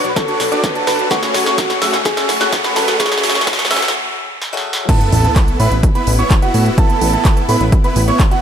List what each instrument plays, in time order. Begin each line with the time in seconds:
Already playing: steel-string acoustic guitar F#3 B3 D4 B4, soft synth lead F#4, string section B4 D5 F#5 D6, riser
0.05 analog synth bass B1, closed hi-hat
0.09 soft synth lead B4
0.16 soft synth lead A4, kick, snare, closed hi-hat
0.28 supersaw synth D4 F#4 C#5, grand piano C#6, closed hi-hat
0.40 analog synth bass B1, snare, open hi-hat
0.51 steel-string acoustic guitar F#3 B3 D4 B4, supersaw synth D4 F#4 D5, grand piano D6, closed hi-hat
0.64 kick, snare, closed hi-hat
0.75 supersaw synth D4 F#4 A4, grand piano A5, closed hi-hat
0.87 analog synth bass F#1, steel-string acoustic guitar F#3 B3 D4 B4, soft synth lead B4, snare, open hi-hat
0.99 closed hi-hat
1.10 steel-string acoustic guitar F#3 A3 C#4 G#4, supersaw synth A3 C#4 G#4 C#5, string section A3 F#5 G#5 C#6, soft synth lead F#4, grand piano C#6, kick, snare, closed hi-hat
1.23 snare, closed hi-hat
1.34 analog synth bass F#1, snare, open hi-hat
1.46 supersaw synth A3 C#4 F#4 G#4 C#5, grand piano C#6, snare, closed hi-hat
1.58 kick, snare, closed hi-hat
1.70 snare, closed hi-hat
1.82 analog synth bass F#2, supersaw synth A3 C#4 F#4 G#4 E5, grand piano E6, snare, open hi-hat
1.93 analog synth bass F#1, snare, closed hi-hat
2.05 soft synth lead G#4, kick, snare, closed hi-hat
2.17 supersaw synth A3 C#4 F#4 G#4 E5, grand piano E6, snare, closed hi-hat
2.29 analog synth bass F#1, snare, open hi-hat
2.40 steel-string acoustic guitar F#3 A3 C#4 G#4, supersaw synth A3 C#4 F#4 G#4 F#5, grand piano F#6, snare, closed hi-hat
2.53 kick, snare, closed hi-hat
2.64 supersaw synth A3 C#4 F#4 G#4 B4, grand piano B5, snare, closed hi-hat
2.76 analog synth bass F#2, steel-string acoustic guitar F#3 A3 C#4 G#4, soft synth lead A4, snare, open hi-hat
2.88 snare, closed hi-hat
2.99 steel-string acoustic guitar F#3 A3 C#4 G#4, supersaw synth A3 C#4 F#4 C#5, soft synth lead G#4, grand piano C#6, kick, snare, closed hi-hat
3.06 snare
3.12 snare, closed hi-hat
3.18 snare
3.23 analog synth bass F#1, snare, open hi-hat
3.29 snare
3.35 supersaw synth A3 C#4 F#4 G#4 C#5, grand piano C#6, snare, closed hi-hat
3.41 snare
3.47 kick, snare, closed hi-hat
3.53 snare
3.59 snare, closed hi-hat
3.65 snare
3.71 analog synth bass F#2, supersaw synth A3 C#4 F#4 G#4 E5, grand piano E6, snare, open hi-hat
3.77 snare
3.82 analog synth bass F#1, snare, closed hi-hat
3.88 snare
4.42 snare
4.53 steel-string acoustic guitar F#3 A3 C#4 G#4
4.57 snare
4.73 snare
4.89 string section A3 B3 E4, supersaw synth B3 E4 A4, grand piano A5, kick, closed hi-hat, crash, sub drop
5.01 closed hi-hat
5.12 analog synth bass A1, open hi-hat
5.24 supersaw synth B3 E4 A4, grand piano A5, closed hi-hat
5.36 kick, clap, closed hi-hat
5.48 closed hi-hat
5.60 analog synth bass A2, supersaw synth B3 E4 B4, grand piano B5, open hi-hat
5.72 analog synth bass A1, closed hi-hat
5.83 kick, closed hi-hat
5.95 supersaw synth B3 E4 B4, grand piano B5, closed hi-hat
6.07 analog synth bass A1, open hi-hat
6.19 supersaw synth B3 E4 C#5, grand piano C#6, closed hi-hat
6.30 kick, clap, closed hi-hat
6.42 supersaw synth B3 E4 F#4, grand piano F#5, closed hi-hat
6.54 analog synth bass A2, open hi-hat
6.66 closed hi-hat
6.78 supersaw synth B3 E4 A4, grand piano A5, kick, closed hi-hat
6.90 closed hi-hat
7.01 analog synth bass A1, open hi-hat
7.13 supersaw synth B3 E4 A4, grand piano A5, closed hi-hat
7.25 kick, clap, closed hi-hat
7.37 closed hi-hat
7.49 analog synth bass A2, supersaw synth B3 E4 B4, grand piano B5, open hi-hat
7.61 analog synth bass A1, closed hi-hat
7.72 kick, closed hi-hat
7.84 supersaw synth B3 E4 B4, grand piano B5, closed hi-hat
7.96 analog synth bass A1, open hi-hat
8.08 supersaw synth B3 E4 C#5, grand piano C#6, closed hi-hat
8.20 kick, clap, closed hi-hat
8.31 supersaw synth B3 E4 F#4, grand piano F#5, closed hi-hat